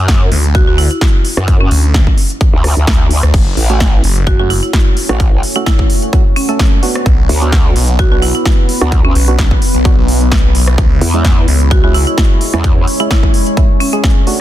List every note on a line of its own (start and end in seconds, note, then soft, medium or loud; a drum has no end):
0.00 0.30 F#2 loud
0.08 kick loud
0.08 snare loud
0.08 closed hi-hat medium
0.32 0.65 D2 loud
0.32 open hi-hat loud
0.44 closed hi-hat medium
0.55 0.63 F#4 medium
0.55 kick loud
0.55 closed hi-hat medium
0.67 0.89 D2 loud
0.67 0.74 F#4 medium
0.78 0.86 E4 medium
0.78 open hi-hat loud
0.91 0.98 E4 medium
0.91 closed hi-hat medium
1.01 kick loud
1.01 snare loud
1.01 closed hi-hat soft
1.08 closed hi-hat medium
1.25 open hi-hat loud
1.37 1.69 F#2 loud
1.37 cross-stick medium
1.48 kick loud
1.48 closed hi-hat medium
1.60 2.07 C#4 medium
1.71 2.05 D2 loud
1.71 open hi-hat loud
1.84 closed hi-hat medium
1.94 kick loud
1.94 snare loud
1.94 closed hi-hat medium
2.07 kick medium
2.18 open hi-hat loud
2.30 closed hi-hat medium
2.41 kick loud
2.41 closed hi-hat medium
2.53 2.75 D2 medium
2.64 cross-stick medium
2.64 open hi-hat loud
2.77 2.86 D2 loud
2.77 closed hi-hat medium
2.87 3.21 D2 loud
2.87 kick loud
2.87 snare loud
2.87 closed hi-hat medium
2.94 closed hi-hat medium
3.11 open hi-hat loud
3.23 3.32 D2 loud
3.23 cross-stick medium
3.23 closed hi-hat medium
3.34 3.55 F#1 medium
3.34 7.02 A3 medium
3.34 7.02 C#4 medium
3.34 8.88 F#4 medium
3.34 7.02 C#5 medium
3.34 kick loud
3.34 closed hi-hat medium
3.34 crash medium
3.57 4.02 A1 loud
3.57 open hi-hat loud
3.70 3.84 A3 medium
3.70 3.84 C#4 medium
3.70 3.84 F#4 loud
3.70 closed hi-hat medium
3.80 kick loud
3.80 snare loud
3.80 closed hi-hat medium
4.04 4.38 F#1 loud
4.04 open hi-hat loud
4.16 closed hi-hat medium
4.27 4.35 F#4 medium
4.27 kick loud
4.27 closed hi-hat medium
4.39 4.61 F#1 loud
4.39 4.53 A3 medium
4.39 4.53 C#4 medium
4.39 4.53 F#4 loud
4.39 4.46 F#4 medium
4.50 4.58 E4 medium
4.50 open hi-hat loud
4.63 4.70 E4 medium
4.63 closed hi-hat medium
4.73 kick loud
4.73 snare loud
4.73 closed hi-hat medium
4.80 closed hi-hat medium
4.97 open hi-hat loud
5.09 5.41 A1 medium
5.09 5.23 A3 medium
5.09 5.23 C#4 medium
5.09 5.23 F#4 loud
5.09 cross-stick medium
5.09 closed hi-hat medium
5.20 kick loud
5.20 closed hi-hat medium
5.43 open hi-hat loud
5.56 5.64 A3 loud
5.56 5.64 C#4 medium
5.56 5.63 E4 medium
5.56 5.64 F#4 loud
5.56 closed hi-hat medium
5.66 5.75 E4 medium
5.66 kick loud
5.66 snare loud
5.66 closed hi-hat medium
5.79 kick medium
5.90 open hi-hat loud
6.02 closed hi-hat medium
6.13 6.23 A3 medium
6.13 6.23 C#4 medium
6.13 6.23 F#4 loud
6.13 kick loud
6.13 closed hi-hat medium
6.36 6.44 C#4 medium
6.36 open hi-hat loud
6.49 6.80 A3 medium
6.49 6.80 C#4 medium
6.49 6.56 C#4 medium
6.49 6.80 A4 loud
6.49 closed hi-hat medium
6.59 kick loud
6.59 snare loud
6.59 closed hi-hat soft
6.66 closed hi-hat medium
6.83 7.39 B3 loud
6.83 7.39 D4 medium
6.83 7.39 F#4 loud
6.83 open hi-hat loud
6.95 cross-stick medium
6.95 closed hi-hat medium
7.06 7.28 B1 loud
7.06 10.74 B3 medium
7.06 10.74 B4 loud
7.06 kick loud
7.06 closed hi-hat medium
7.29 7.74 D2 medium
7.29 open hi-hat loud
7.42 7.56 B3 medium
7.42 7.56 D4 medium
7.42 7.56 F#4 loud
7.42 closed hi-hat medium
7.52 kick loud
7.52 snare loud
7.52 closed hi-hat medium
7.76 8.10 B1 loud
7.76 open hi-hat loud
7.88 closed hi-hat soft
7.99 8.07 F#4 medium
7.99 kick loud
7.99 closed hi-hat medium
8.12 8.33 B1 loud
8.12 8.25 B3 medium
8.12 8.25 D4 medium
8.12 8.25 F#4 medium
8.12 8.18 F#4 medium
8.22 8.30 E4 medium
8.22 open hi-hat loud
8.35 8.42 E4 medium
8.35 closed hi-hat medium
8.46 kick loud
8.46 snare loud
8.46 closed hi-hat soft
8.52 closed hi-hat medium
8.69 open hi-hat loud
8.81 9.14 D2 medium
8.81 8.95 B3 loud
8.81 8.95 D4 medium
8.81 8.95 F#4 loud
8.81 cross-stick medium
8.81 closed hi-hat medium
8.92 14.41 E4 medium
8.92 kick loud
8.92 closed hi-hat medium
9.05 9.51 C#4 medium
9.15 9.37 B1 loud
9.15 open hi-hat loud
9.28 9.36 B3 medium
9.28 9.36 D4 medium
9.28 9.36 F#4 loud
9.28 closed hi-hat medium
9.39 9.49 B1 loud
9.39 kick loud
9.39 snare loud
9.39 closed hi-hat medium
9.51 kick medium
9.62 open hi-hat loud
9.74 9.96 B1 loud
9.74 closed hi-hat soft
9.85 9.95 B3 medium
9.85 9.95 D4 medium
9.85 9.95 F#4 loud
9.85 kick loud
9.85 closed hi-hat medium
9.98 10.42 B1 loud
10.08 open hi-hat loud
10.21 closed hi-hat medium
10.32 kick loud
10.32 snare loud
10.32 closed hi-hat soft
10.38 closed hi-hat medium
10.44 10.76 B1 loud
10.55 open hi-hat loud
10.67 cross-stick medium
10.67 closed hi-hat medium
10.78 11.00 C#2 loud
10.78 14.41 G#3 medium
10.78 14.41 C#4 medium
10.78 14.41 C#5 medium
10.78 kick loud
10.78 closed hi-hat medium
11.01 11.46 E2 loud
11.01 open hi-hat loud
11.14 11.28 G#3 medium
11.14 11.28 C#4 medium
11.14 11.28 E4 loud
11.14 closed hi-hat soft
11.25 kick loud
11.25 snare loud
11.25 closed hi-hat medium
11.48 11.82 C#2 loud
11.48 open hi-hat loud
11.61 closed hi-hat medium
11.71 11.79 F#4 medium
11.71 kick loud
11.71 closed hi-hat medium
11.84 12.05 C#2 loud
11.84 11.98 G#3 medium
11.84 11.98 C#4 medium
11.84 11.98 E4 medium
11.84 11.91 F#4 medium
11.94 12.02 E4 loud
11.94 open hi-hat loud
12.07 12.14 E4 medium
12.07 closed hi-hat soft
12.18 kick loud
12.18 snare loud
12.18 closed hi-hat soft
12.24 closed hi-hat medium
12.41 open hi-hat loud
12.54 12.86 E2 loud
12.54 12.67 G#3 medium
12.54 12.67 C#4 medium
12.54 12.67 E4 loud
12.54 cross-stick medium
12.54 closed hi-hat medium
12.64 kick loud
12.64 closed hi-hat medium
12.87 open hi-hat loud
13.00 13.08 G#3 loud
13.00 13.08 C#4 medium
13.00 13.08 E4 loud
13.00 13.07 E4 medium
13.00 closed hi-hat medium
13.11 13.19 E4 medium
13.11 kick loud
13.11 snare loud
13.11 closed hi-hat medium
13.23 kick medium
13.34 open hi-hat loud
13.47 closed hi-hat medium
13.57 13.67 G#3 medium
13.57 13.67 C#4 medium
13.57 13.67 E4 loud
13.57 kick loud
13.57 closed hi-hat medium
13.80 13.88 C#4 medium
13.80 open hi-hat loud
13.93 14.24 G#3 medium
13.93 14.00 C#4 medium
13.93 14.24 C#4 medium
13.93 14.24 G#4 medium
13.93 closed hi-hat medium
14.04 kick loud
14.04 snare loud
14.04 closed hi-hat soft
14.10 closed hi-hat medium
14.27 14.41 A3 loud
14.27 14.41 D4 medium
14.27 14.41 F#4 loud
14.27 open hi-hat loud